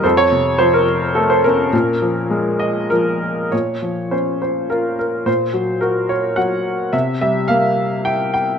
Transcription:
<<
  \new Staff \with { instrumentName = "Upright piano" } { \time 3/4 \key bes \minor \tempo 4 = 106 << { c''16 des''8. c''16 bes'8. a'16 c''16 bes'8~ | bes'4. ees''8 bes'4 | des''4 c''8 c''8 bes'8 bes'8 | c''4 bes'8 des''8 ges''4 |
e''8 e''8 f''4 g''8 g''8 | } \\ { a'4. r4 des'8~ | des'2 r4 | r2. | r2. |
r2. | } >> }
  \new Staff \with { instrumentName = "Upright piano" } { \clef bass \time 3/4 \key bes \minor f,8 c8 f4 a4 | bes,8 f8 aes4 f4 | bes,8 f8 des'4 f'4 | bes,8 ges8 ges'4 ges4 |
c8 g8 bes4 e'4 | }
>>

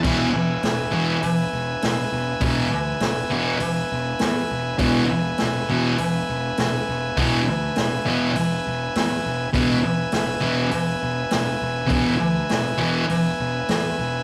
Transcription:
<<
  \new Staff \with { instrumentName = "Transistor combo organ" } { \time 4/4 \key e \major \tempo 4 = 101 <b' e'' gis''>1~ | <b' e'' gis''>1 | <b' e'' gis''>1~ | <b' e'' gis''>1 |
<b' e'' gis''>1~ | <b' e'' gis''>1 | }
  \new Staff \with { instrumentName = "Distorted electric guitar" } { \clef bass \time 4/4 \key e \major <e, b, e>8 r4 <e, b, e>8 r2 | <e, b, e>8 r4 <e, b, e>8 r2 | <e, b, e>8 r4 <e, b, e>8 r2 | <e, b, e>8 r4 <e, b, e>8 r2 |
<e, b, e>8 r4 <e, b, e>8 r2 | <e, b, e>8 r4 <e, b, e>8 r2 | }
  \new Staff \with { instrumentName = "Picked electric bass" } { \clef bass \time 4/4 \key e \major e,,8 e,,8 e,,8 e,,8 e,,8 e,,8 e,,8 e,,8 | e,,8 d,8 e,,8 e,,8 e,,8 e,,8 e,8 e,,8 | e,,8 e,,8 e,,8 e,,8 e,,8 e,,8 e,,8 e,,8 | e,,8 d,8 e,,8 e,,8 e,,8 e,,8 e,8 e,,8 |
e,,8 e,,8 e,,8 e,,8 e,,8 e,,8 e,,8 e,,8 | e,,8 d,8 e,,8 e,,8 e,,8 e,,8 e,8 e,,8 | }
  \new DrumStaff \with { instrumentName = "Drums" } \drummode { \time 4/4 <cymc bd>4 <hho sn>4 hho4 <hho sn>4 | <hho bd>4 <hho sn>4 hho4 <hho sn>4 | <hho bd>4 <hho sn>4 hho4 <hho sn>4 | <hho bd>4 <hho sn>4 hho4 <hho sn>4 |
<hho bd>4 <hho sn>4 hho4 <hho sn>4 | <hho bd>4 <hho sn>4 hho4 <hho sn>4 | }
>>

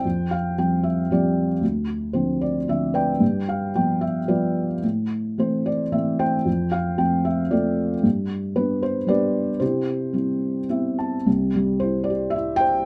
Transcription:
<<
  \new Staff \with { instrumentName = "Felt piano" } { \time 3/4 \key c \major \tempo 4 = 112 << { g''8 f''8 g''8 e''8 d''8. r16 | r4 c''8 d''8 e''8 g''8~ | g''8 f''8 g''8 e''8 d''8. r16 | r4 c''8 d''8 e''8 g''8~ |
g''8 f''8 g''8 e''8 d''8. r16 | r4 b'8 c''8 d''4 | c''2 e''8 a''8 | r4 c''8 d''8 e''8 g''8 | } \\ { c''4 r4 <f' g'>4 | r2 r8 <b' d''>8~ | <b' d''>4 r4 <f' b'>4 | r2 r8 c''8~ |
c''4 r4 <f' a'>4 | r2 <g' b'>4 | <e' g'>2 r4 | r2 r8 c''8 | } >> }
  \new Staff \with { instrumentName = "Felt piano" } { \clef bass \time 3/4 \key c \major f,4 <f g c'>4 <f g c'>4 | d,4 <d f c'>4 <d f c'>4 | g,4 <f g b>4 <f g b>4 | a,4 <e a c'>4 <e a c'>4 |
f,4 <f a c'>4 <f a c'>4 | g,4 <g b d'>4 <g b d'>4 | c4 <g c' e'>4 <b c' e'>4 | <c, c>8 g8 e'8 g'8 e'4 | }
>>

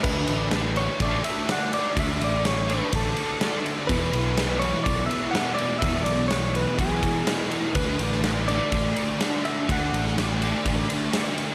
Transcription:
<<
  \new Staff \with { instrumentName = "Clean electric guitar" } { \time 4/4 \key e \mixolydian \tempo 4 = 124 b'4. cis''8 d''8 e''8 fis''8 d''8 | e''8 d''8 cis''8 b'8 a'4. r8 | b'4. cis''8 d''8 e''8 fis''8 d''8 | e''8 d''8 cis''8 b'8 gis'4. r8 |
b'4 r8 d''2 e''8 | fis''4 r2. | }
  \new Staff \with { instrumentName = "Distorted electric guitar" } { \clef bass \time 4/4 \key e \mixolydian <d a d'>4 <d a d'>8 <a d'>8 <d a d'>4 <d a d'>4 | <d a d'>4 <d a d'>8 <a d'>8 <d a d'>4 <d a d'>4 | <e, b, e>4 <e, b, e>8 <b, e>8 <e, b, e>4 <e, b, e>4 | <e, b, e>4 <e, b, e>8 <b, e>8 <e, b, e>4 <e, b, e>4 |
<d a d'>4 <d a d'>8 <a d'>8 <d a d'>4 <d a d'>4 | <d a d'>4 <d a d'>8 <a d'>8 <d a d'>4 <d a d'>4 | }
  \new Staff \with { instrumentName = "Fingered electric bass" } { \clef bass \time 4/4 \key e \mixolydian d,8 a,,4. a,,8 r4. | d,8 a,,4. a,,8 r4. | e,8 b,,4. b,,8 r4. | e,8 b,,4. b,,8 r4. |
d,8 a,,4. a,,8 r4. | d,8 a,,4. a,,8 r4. | }
  \new DrumStaff \with { instrumentName = "Drums" } \drummode { \time 4/4 <cymc bd>8 cymr8 <cymr sn>8 cymr8 <bd cymr>8 cymr8 <cymr sn>8 cymr8 | <bd cymr>8 cymr8 <cymr sn>8 cymr8 <bd cymr>8 cymr8 <cymr sn>8 cymr8 | <bd cymr>8 cymr8 <cymr sn>8 cymr8 <bd cymr>8 cymr8 <cymr sn>8 cymr8 | <bd cymr>8 cymr8 <cymr sn>8 cymr8 <bd cymr>8 <bd cymr>8 <cymr sn>8 cymr8 |
<bd cymr>8 cymr16 sn16 <cymr sn>8 cymr8 <bd cymr>8 cymr8 <cymr sn>8 cymr8 | <bd cymr>8 cymr16 sn16 <cymr sn>8 cymr8 <bd cymr>8 cymr8 <cymr sn>8 cymr8 | }
>>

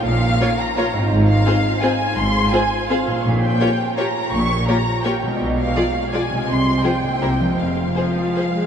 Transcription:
<<
  \new Staff \with { instrumentName = "Violin section" } { \time 3/4 \key f \minor \tempo 4 = 166 f''4. bes''4. | r8 f''4. aes''4 | c'''4 aes''4 f''4 | r8 g''4. bes''4 |
des'''4 bes''4 g''4 | r8 f''4. gis''4 | c'''4 g''2 | f''2. | }
  \new Staff \with { instrumentName = "Violin section" } { \time 3/4 \key f \minor r4 <f' des''>4 <f' des''>4 | r4 <aes' c''>4 <aes' c''>4 | r4 <aes' c''>4 <aes' c''>4 | r4 <g' des''>4 <g' des''>4 |
r4 <g' des''>4 <g' des''>4 | r4 <gis' d''>4 <gis' d''>4 | r4 <aes' c''>4 <bes' c''>4 | r4 <aes' c''>4 <aes' c''>4 | }
  \new Staff \with { instrumentName = "Harp" } { \time 3/4 \key f \minor <bes, des' f' bes'>2. | <aes, c' f' c''>2.~ | <aes, c' f' c''>2. | <bes, bes f' des''>2.~ |
<bes, bes f' des''>2. | <b, gis f' d''>2. | <c aes f' c''>2 <c bes e' c''>4 | <f aes f' c''>2. | }
  \new Staff \with { instrumentName = "Viola section" } { \time 3/4 \key f \minor r4 <bes f'>4 <bes f'>4 | r4 <c' f'>4 <c' f'>4 | r4 <c' f'>4 <c' f'>4 | r4 <bes f'>4 <bes f'>4 |
r4 <bes f'>4 <bes f'>4 | r4 <f f'>4 <f f'>4 | r4 <f f'>4 <g e'>4 | r4 f4. aes8 | }
  \new Staff \with { instrumentName = "Cello section" } { \clef bass \time 3/4 \key f \minor bes,4 r2 | aes,4 r2 | aes,4 r2 | bes,4 r2 |
bes,4 r2 | b,4 r2 | c4 r4 c4 | f,4 r2 | }
  \new Staff \with { instrumentName = "Double bass section" } { \clef bass \time 3/4 \key f \minor bes,,4 r2 | aes,,4 r2 | aes,,4 r2 | bes,,4 r2 |
bes,,4 r2 | b,,4 r2 | c,4 r4 c,4 | f,,4 r2 | }
>>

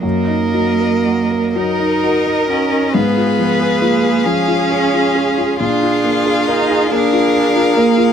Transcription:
<<
  \new Staff \with { instrumentName = "Violin" } { \time 6/8 \key ees \minor \tempo 4. = 45 ees''4. ees''4. | f''2. | f''4. f''4. | }
  \new Staff \with { instrumentName = "Violin" } { \time 6/8 \key ees \minor r4. bes'4. | ces''4. aes'4. | f'4. bes'4. | }
  \new Staff \with { instrumentName = "Viola" } { \time 6/8 \key ees \minor bes'4. bes'4. | aes'2. | aes'4. aes'4. | }
  \new Staff \with { instrumentName = "Grand piano" } { \time 6/8 \key ees \minor ges,16 ees'16 ges16 bes'16 ges'16 bes'16 ges16 ees'16 ges'16 ees'16 ges'16 ees'16 | aes,16 f'16 f16 aes'16 f'16 aes'16 f16 f'16 aes'16 f'16 aes'16 f'16 | bes,16 f'16 bes16 aes'16 bes'16 aes'16 bes16 f'16 bes'16 f'16 bes'16 f'16 | }
  \new Staff \with { instrumentName = "Cello" } { \time 6/8 \key ees \minor bes4. ees'4 des'8 | ces'4 bes8 des'4. | d'4 ees'8 d'4 bes8 | }
>>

